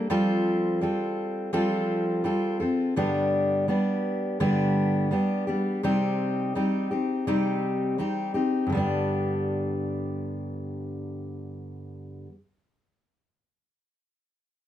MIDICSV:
0, 0, Header, 1, 2, 480
1, 0, Start_track
1, 0, Tempo, 715990
1, 66, Time_signature, 4, 2, 24, 8
1, 9838, End_track
2, 0, Start_track
2, 0, Title_t, "Steel-string acoustic guitar"
2, 0, Program_c, 0, 25
2, 0, Note_on_c, 0, 62, 41
2, 65, Note_on_c, 0, 53, 61
2, 67, Note_on_c, 0, 55, 76
2, 68, Note_off_c, 0, 62, 0
2, 69, Note_on_c, 0, 60, 81
2, 72, Note_on_c, 0, 65, 82
2, 74, Note_on_c, 0, 69, 80
2, 542, Note_off_c, 0, 55, 0
2, 543, Note_off_c, 0, 60, 0
2, 545, Note_on_c, 0, 55, 59
2, 546, Note_off_c, 0, 53, 0
2, 547, Note_off_c, 0, 65, 0
2, 550, Note_off_c, 0, 69, 0
2, 551, Note_on_c, 0, 60, 55
2, 555, Note_on_c, 0, 65, 54
2, 559, Note_on_c, 0, 69, 57
2, 1020, Note_off_c, 0, 60, 0
2, 1022, Note_off_c, 0, 65, 0
2, 1023, Note_off_c, 0, 55, 0
2, 1023, Note_off_c, 0, 69, 0
2, 1024, Note_on_c, 0, 53, 66
2, 1025, Note_on_c, 0, 55, 70
2, 1028, Note_on_c, 0, 60, 70
2, 1030, Note_on_c, 0, 65, 75
2, 1031, Note_on_c, 0, 69, 83
2, 1498, Note_off_c, 0, 55, 0
2, 1499, Note_off_c, 0, 60, 0
2, 1501, Note_on_c, 0, 55, 54
2, 1503, Note_off_c, 0, 65, 0
2, 1505, Note_off_c, 0, 53, 0
2, 1505, Note_off_c, 0, 69, 0
2, 1507, Note_on_c, 0, 60, 56
2, 1511, Note_on_c, 0, 65, 60
2, 1513, Note_on_c, 0, 69, 61
2, 1733, Note_off_c, 0, 69, 0
2, 1741, Note_off_c, 0, 65, 0
2, 1741, Note_on_c, 0, 69, 47
2, 1744, Note_off_c, 0, 55, 0
2, 1747, Note_off_c, 0, 60, 0
2, 1749, Note_on_c, 0, 65, 42
2, 1757, Note_on_c, 0, 60, 37
2, 1984, Note_off_c, 0, 69, 0
2, 1986, Note_on_c, 0, 43, 59
2, 1988, Note_off_c, 0, 60, 0
2, 1988, Note_off_c, 0, 65, 0
2, 1989, Note_on_c, 0, 50, 64
2, 1991, Note_on_c, 0, 55, 79
2, 1991, Note_on_c, 0, 59, 70
2, 1994, Note_on_c, 0, 62, 75
2, 1995, Note_on_c, 0, 67, 72
2, 2464, Note_off_c, 0, 55, 0
2, 2464, Note_off_c, 0, 59, 0
2, 2467, Note_off_c, 0, 43, 0
2, 2467, Note_on_c, 0, 55, 50
2, 2468, Note_off_c, 0, 50, 0
2, 2470, Note_off_c, 0, 62, 0
2, 2472, Note_on_c, 0, 59, 54
2, 2476, Note_off_c, 0, 67, 0
2, 2478, Note_on_c, 0, 62, 51
2, 2479, Note_on_c, 0, 67, 60
2, 2946, Note_off_c, 0, 59, 0
2, 2948, Note_off_c, 0, 62, 0
2, 2949, Note_on_c, 0, 43, 65
2, 2950, Note_off_c, 0, 55, 0
2, 2951, Note_on_c, 0, 50, 69
2, 2952, Note_on_c, 0, 55, 73
2, 2954, Note_off_c, 0, 67, 0
2, 2954, Note_on_c, 0, 59, 78
2, 2956, Note_on_c, 0, 62, 70
2, 2957, Note_on_c, 0, 67, 81
2, 3422, Note_off_c, 0, 55, 0
2, 3422, Note_off_c, 0, 59, 0
2, 3424, Note_on_c, 0, 55, 48
2, 3428, Note_off_c, 0, 43, 0
2, 3428, Note_off_c, 0, 62, 0
2, 3429, Note_off_c, 0, 50, 0
2, 3430, Note_on_c, 0, 59, 53
2, 3436, Note_off_c, 0, 67, 0
2, 3436, Note_on_c, 0, 62, 57
2, 3439, Note_on_c, 0, 67, 63
2, 3659, Note_off_c, 0, 67, 0
2, 3665, Note_off_c, 0, 62, 0
2, 3666, Note_off_c, 0, 55, 0
2, 3667, Note_on_c, 0, 67, 49
2, 3669, Note_off_c, 0, 59, 0
2, 3673, Note_on_c, 0, 62, 42
2, 3677, Note_on_c, 0, 59, 44
2, 3680, Note_on_c, 0, 55, 43
2, 3905, Note_off_c, 0, 55, 0
2, 3907, Note_off_c, 0, 67, 0
2, 3910, Note_off_c, 0, 62, 0
2, 3911, Note_on_c, 0, 48, 70
2, 3912, Note_off_c, 0, 59, 0
2, 3914, Note_on_c, 0, 55, 62
2, 3917, Note_on_c, 0, 60, 74
2, 3918, Note_on_c, 0, 63, 75
2, 3918, Note_on_c, 0, 67, 76
2, 4387, Note_off_c, 0, 60, 0
2, 4389, Note_off_c, 0, 48, 0
2, 4390, Note_off_c, 0, 55, 0
2, 4392, Note_off_c, 0, 63, 0
2, 4393, Note_on_c, 0, 55, 48
2, 4395, Note_on_c, 0, 60, 50
2, 4399, Note_off_c, 0, 67, 0
2, 4400, Note_on_c, 0, 63, 57
2, 4402, Note_on_c, 0, 67, 57
2, 4623, Note_off_c, 0, 67, 0
2, 4630, Note_off_c, 0, 55, 0
2, 4630, Note_off_c, 0, 63, 0
2, 4631, Note_on_c, 0, 67, 42
2, 4632, Note_off_c, 0, 60, 0
2, 4638, Note_on_c, 0, 63, 37
2, 4643, Note_on_c, 0, 60, 36
2, 4870, Note_off_c, 0, 60, 0
2, 4870, Note_off_c, 0, 67, 0
2, 4873, Note_off_c, 0, 63, 0
2, 4874, Note_on_c, 0, 48, 61
2, 4875, Note_on_c, 0, 55, 68
2, 4878, Note_on_c, 0, 60, 74
2, 4880, Note_on_c, 0, 63, 72
2, 4882, Note_on_c, 0, 67, 69
2, 5347, Note_off_c, 0, 60, 0
2, 5348, Note_off_c, 0, 55, 0
2, 5351, Note_off_c, 0, 48, 0
2, 5351, Note_on_c, 0, 55, 50
2, 5352, Note_off_c, 0, 63, 0
2, 5355, Note_on_c, 0, 60, 47
2, 5360, Note_on_c, 0, 63, 60
2, 5361, Note_off_c, 0, 67, 0
2, 5363, Note_on_c, 0, 67, 56
2, 5584, Note_off_c, 0, 67, 0
2, 5590, Note_off_c, 0, 55, 0
2, 5590, Note_off_c, 0, 63, 0
2, 5592, Note_off_c, 0, 60, 0
2, 5592, Note_on_c, 0, 67, 45
2, 5598, Note_on_c, 0, 63, 42
2, 5603, Note_on_c, 0, 60, 36
2, 5810, Note_on_c, 0, 43, 59
2, 5829, Note_on_c, 0, 50, 57
2, 5830, Note_off_c, 0, 67, 0
2, 5833, Note_off_c, 0, 63, 0
2, 5836, Note_off_c, 0, 60, 0
2, 5849, Note_on_c, 0, 55, 65
2, 5864, Note_on_c, 0, 59, 67
2, 5880, Note_on_c, 0, 62, 66
2, 5894, Note_on_c, 0, 67, 66
2, 8219, Note_off_c, 0, 43, 0
2, 8238, Note_off_c, 0, 50, 0
2, 8258, Note_off_c, 0, 55, 0
2, 8273, Note_off_c, 0, 59, 0
2, 8290, Note_off_c, 0, 62, 0
2, 8304, Note_off_c, 0, 67, 0
2, 9838, End_track
0, 0, End_of_file